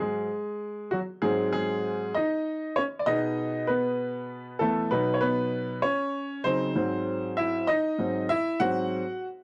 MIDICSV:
0, 0, Header, 1, 2, 480
1, 0, Start_track
1, 0, Tempo, 614754
1, 960, Time_signature, 6, 3, 24, 8
1, 7366, End_track
2, 0, Start_track
2, 0, Title_t, "Upright piano"
2, 0, Program_c, 0, 0
2, 0, Note_on_c, 0, 44, 46
2, 0, Note_on_c, 0, 54, 40
2, 0, Note_on_c, 0, 68, 64
2, 13, Note_on_c, 0, 56, 50
2, 208, Note_off_c, 0, 44, 0
2, 210, Note_off_c, 0, 54, 0
2, 695, Note_off_c, 0, 56, 0
2, 711, Note_on_c, 0, 66, 66
2, 727, Note_on_c, 0, 54, 50
2, 740, Note_off_c, 0, 68, 0
2, 766, Note_off_c, 0, 66, 0
2, 780, Note_off_c, 0, 54, 0
2, 950, Note_on_c, 0, 68, 73
2, 955, Note_on_c, 0, 44, 48
2, 963, Note_on_c, 0, 54, 43
2, 967, Note_on_c, 0, 60, 49
2, 970, Note_on_c, 0, 56, 58
2, 1179, Note_off_c, 0, 68, 0
2, 1188, Note_off_c, 0, 56, 0
2, 1191, Note_on_c, 0, 68, 86
2, 1207, Note_on_c, 0, 56, 54
2, 1646, Note_off_c, 0, 44, 0
2, 1650, Note_off_c, 0, 54, 0
2, 1652, Note_off_c, 0, 56, 0
2, 1652, Note_off_c, 0, 60, 0
2, 1675, Note_on_c, 0, 75, 73
2, 1690, Note_off_c, 0, 68, 0
2, 1693, Note_on_c, 0, 63, 60
2, 2135, Note_off_c, 0, 63, 0
2, 2155, Note_on_c, 0, 73, 79
2, 2172, Note_off_c, 0, 75, 0
2, 2172, Note_on_c, 0, 61, 59
2, 2197, Note_off_c, 0, 73, 0
2, 2213, Note_off_c, 0, 61, 0
2, 2337, Note_on_c, 0, 74, 66
2, 2391, Note_on_c, 0, 75, 84
2, 2395, Note_on_c, 0, 47, 49
2, 2396, Note_off_c, 0, 74, 0
2, 2400, Note_on_c, 0, 68, 43
2, 2405, Note_on_c, 0, 63, 67
2, 2408, Note_on_c, 0, 59, 54
2, 2851, Note_off_c, 0, 63, 0
2, 2868, Note_on_c, 0, 71, 73
2, 2873, Note_off_c, 0, 59, 0
2, 2885, Note_on_c, 0, 59, 60
2, 2890, Note_off_c, 0, 75, 0
2, 3571, Note_off_c, 0, 59, 0
2, 3585, Note_on_c, 0, 69, 74
2, 3596, Note_on_c, 0, 52, 38
2, 3601, Note_on_c, 0, 57, 57
2, 3601, Note_on_c, 0, 59, 47
2, 3615, Note_off_c, 0, 71, 0
2, 3806, Note_off_c, 0, 47, 0
2, 3809, Note_off_c, 0, 68, 0
2, 3814, Note_off_c, 0, 52, 0
2, 3815, Note_off_c, 0, 69, 0
2, 3816, Note_off_c, 0, 59, 0
2, 3824, Note_off_c, 0, 57, 0
2, 3832, Note_on_c, 0, 71, 77
2, 3837, Note_on_c, 0, 47, 49
2, 3841, Note_on_c, 0, 54, 41
2, 3846, Note_on_c, 0, 59, 65
2, 3846, Note_on_c, 0, 63, 50
2, 4012, Note_on_c, 0, 73, 59
2, 4016, Note_off_c, 0, 59, 0
2, 4027, Note_off_c, 0, 71, 0
2, 4066, Note_on_c, 0, 71, 87
2, 4073, Note_off_c, 0, 73, 0
2, 4082, Note_on_c, 0, 59, 62
2, 4521, Note_off_c, 0, 71, 0
2, 4527, Note_off_c, 0, 47, 0
2, 4529, Note_off_c, 0, 54, 0
2, 4529, Note_off_c, 0, 59, 0
2, 4531, Note_off_c, 0, 63, 0
2, 4546, Note_on_c, 0, 73, 77
2, 4562, Note_on_c, 0, 61, 59
2, 5009, Note_off_c, 0, 61, 0
2, 5029, Note_on_c, 0, 72, 93
2, 5034, Note_on_c, 0, 49, 39
2, 5038, Note_on_c, 0, 54, 38
2, 5040, Note_on_c, 0, 63, 45
2, 5045, Note_on_c, 0, 60, 65
2, 5047, Note_off_c, 0, 73, 0
2, 5252, Note_off_c, 0, 49, 0
2, 5254, Note_off_c, 0, 54, 0
2, 5255, Note_off_c, 0, 63, 0
2, 5270, Note_off_c, 0, 60, 0
2, 5273, Note_on_c, 0, 44, 47
2, 5276, Note_on_c, 0, 54, 43
2, 5281, Note_on_c, 0, 60, 55
2, 5753, Note_on_c, 0, 76, 80
2, 5766, Note_on_c, 0, 64, 59
2, 5775, Note_off_c, 0, 72, 0
2, 5965, Note_off_c, 0, 44, 0
2, 5966, Note_off_c, 0, 54, 0
2, 5969, Note_off_c, 0, 60, 0
2, 5986, Note_off_c, 0, 64, 0
2, 5992, Note_on_c, 0, 75, 85
2, 6003, Note_off_c, 0, 76, 0
2, 6006, Note_on_c, 0, 63, 67
2, 6235, Note_on_c, 0, 44, 38
2, 6238, Note_on_c, 0, 54, 34
2, 6240, Note_on_c, 0, 60, 43
2, 6451, Note_off_c, 0, 63, 0
2, 6452, Note_off_c, 0, 44, 0
2, 6454, Note_off_c, 0, 54, 0
2, 6455, Note_off_c, 0, 60, 0
2, 6474, Note_on_c, 0, 76, 91
2, 6487, Note_on_c, 0, 64, 69
2, 6489, Note_off_c, 0, 75, 0
2, 6699, Note_off_c, 0, 76, 0
2, 6706, Note_off_c, 0, 64, 0
2, 6713, Note_on_c, 0, 78, 99
2, 6715, Note_on_c, 0, 44, 49
2, 6719, Note_on_c, 0, 54, 44
2, 6725, Note_on_c, 0, 60, 54
2, 6725, Note_on_c, 0, 66, 69
2, 7035, Note_off_c, 0, 44, 0
2, 7037, Note_off_c, 0, 54, 0
2, 7040, Note_off_c, 0, 60, 0
2, 7224, Note_off_c, 0, 78, 0
2, 7230, Note_off_c, 0, 66, 0
2, 7366, End_track
0, 0, End_of_file